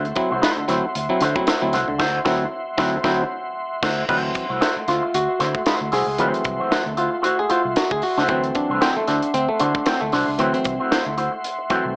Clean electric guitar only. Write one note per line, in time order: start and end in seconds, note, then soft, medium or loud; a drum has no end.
0.00 0.11 A3 medium
0.05 muted clean electric guitar stroke medium
0.16 muted clean electric guitar stroke soft
0.30 0.40 A3 soft
0.30 0.41 E4 medium
0.30 0.41 F#4 medium
0.30 0.42 C5 medium
0.42 0.63 A3 medium
0.42 0.57 E4 loud
0.42 0.56 F#4 loud
0.42 0.56 C5 loud
0.57 muted clean electric guitar stroke medium
0.69 0.86 A3 medium
0.69 0.83 E4 medium
0.69 0.82 F#4 medium
0.69 0.82 C5 medium
0.84 muted clean electric guitar stroke soft
1.09 muted clean electric guitar stroke soft
1.21 1.42 A3 medium
1.21 1.35 E4 medium
1.21 1.35 F#4 medium
1.21 1.34 C5 medium
1.36 muted clean electric guitar stroke soft
1.47 1.68 A3 medium
1.47 1.62 E4 medium
1.47 1.61 F#4 medium
1.47 1.61 C5 medium
1.62 muted clean electric guitar stroke soft
1.73 1.91 A3 medium
1.73 1.88 E4 medium
1.73 1.87 F#4 medium
1.73 1.87 C5 medium
1.88 muted clean electric guitar stroke soft
1.98 2.17 A3 medium
1.98 2.18 E4 loud
1.98 2.18 F#4 medium
1.98 2.18 C5 loud
2.25 2.44 A3 medium
2.25 2.44 E4 loud
2.25 2.44 F#4 medium
2.25 2.44 C5 medium
2.78 2.96 A3 loud
2.78 2.97 E4 medium
2.78 2.97 F#4 loud
2.78 2.97 C5 medium
3.03 3.22 A3 medium
3.03 3.22 E4 medium
3.03 3.23 F#4 medium
3.03 3.23 C5 medium
3.82 4.02 A3 loud
3.82 4.01 E4 loud
3.82 4.01 F#4 loud
3.82 4.01 C5 loud
4.08 4.30 A3 medium
4.08 4.23 E4 medium
4.08 4.23 F#4 medium
4.08 4.23 C5 medium
4.24 muted clean electric guitar stroke soft
4.35 muted clean electric guitar stroke soft
4.49 4.60 A3 medium
4.49 4.60 E4 medium
4.49 4.60 F#4 soft
4.49 4.61 C5 medium
4.61 4.83 A3 medium
4.61 4.76 E4 medium
4.61 4.76 F#4 loud
4.61 4.76 C5 loud
4.77 muted clean electric guitar stroke soft
4.88 5.05 A3 medium
4.88 5.02 E4 medium
4.88 5.02 F#4 medium
4.88 5.02 C5 medium
5.03 muted clean electric guitar stroke medium
5.28 muted clean electric guitar stroke medium
5.39 5.61 A3 medium
5.39 5.54 E4 medium
5.39 5.54 F#4 medium
5.39 5.53 C5 medium
5.54 muted clean electric guitar stroke soft
5.66 5.88 A3 medium
5.66 5.80 E4 medium
5.66 5.80 F#4 medium
5.66 5.79 C5 medium
5.81 muted clean electric guitar stroke medium
5.92 6.10 A3 medium
5.92 6.06 E4 medium
5.92 6.06 F#4 medium
5.92 6.06 C5 medium
6.07 muted clean electric guitar stroke soft
6.19 6.40 A3 medium
6.19 6.33 E4 medium
6.19 6.33 F#4 medium
6.19 6.32 C5 loud
6.34 muted clean electric guitar stroke soft
6.45 muted clean electric guitar stroke soft
6.59 6.70 A3 medium
6.59 6.70 E4 medium
6.59 6.70 F#4 medium
6.59 6.71 C5 medium
6.71 6.92 A3 loud
6.71 6.85 E4 medium
6.71 6.84 F#4 loud
6.71 6.84 C5 loud
6.85 muted clean electric guitar stroke soft
6.97 7.15 A3 medium
6.97 7.11 E4 medium
6.97 7.11 F#4 medium
6.97 7.10 C5 medium
7.11 muted clean electric guitar stroke soft
7.22 7.44 A3 medium
7.22 7.36 E4 medium
7.22 7.36 F#4 medium
7.22 7.36 C5 medium
7.37 muted clean electric guitar stroke medium
7.49 7.67 A3 medium
7.49 7.63 E4 medium
7.49 7.63 F#4 medium
7.49 7.62 C5 medium
7.64 muted clean electric guitar stroke medium
7.76 muted clean electric guitar stroke soft
7.90 muted clean electric guitar stroke medium
8.17 8.27 A3 medium
8.17 8.28 E4 medium
8.17 8.28 F#4 medium
8.17 8.29 C5 medium
8.29 8.50 A3 medium
8.29 8.42 E4 medium
8.29 8.42 F#4 medium
8.29 8.42 C5 loud
8.43 muted clean electric guitar stroke soft
8.55 muted clean electric guitar stroke soft
8.70 8.79 A3 medium
8.70 8.80 E4 medium
8.70 8.80 F#4 medium
8.70 8.81 C5 medium
8.81 9.02 A3 loud
8.81 8.96 E4 loud
8.81 8.95 F#4 loud
8.81 8.95 C5 loud
8.96 muted clean electric guitar stroke soft
9.07 9.25 A3 medium
9.07 9.22 E4 medium
9.07 9.21 F#4 medium
9.07 9.21 C5 medium
9.22 muted clean electric guitar stroke soft
9.49 muted clean electric guitar stroke soft
9.60 9.81 A3 medium
9.60 9.74 E4 medium
9.60 9.74 F#4 medium
9.60 9.73 C5 medium
9.74 muted clean electric guitar stroke soft
9.86 10.07 A3 medium
9.86 10.00 E4 medium
9.86 10.00 F#4 medium
9.86 10.00 C5 medium
10.01 muted clean electric guitar stroke soft
10.12 10.30 A3 medium
10.12 10.27 E4 medium
10.12 10.26 F#4 medium
10.12 10.26 C5 medium
10.27 muted clean electric guitar stroke soft
10.39 10.60 A3 medium
10.39 10.54 E4 medium
10.39 10.53 F#4 medium
10.39 10.53 C5 loud
10.54 muted clean electric guitar stroke soft
10.65 muted clean electric guitar stroke soft
10.79 10.90 A3 soft
10.79 10.90 E4 medium
10.79 10.91 F#4 medium
10.79 10.91 C5 medium
10.91 11.13 A3 loud
10.91 11.05 E4 loud
10.91 11.05 F#4 loud
10.91 11.05 C5 loud
11.06 muted clean electric guitar stroke soft
11.17 11.35 A3 medium
11.17 11.32 E4 medium
11.17 11.32 F#4 medium
11.17 11.31 C5 medium
11.32 muted clean electric guitar stroke soft
11.58 muted clean electric guitar stroke medium
11.70 11.92 A3 medium
11.70 11.85 E4 medium
11.70 11.84 F#4 medium
11.70 11.84 C5 medium
11.85 muted clean electric guitar stroke soft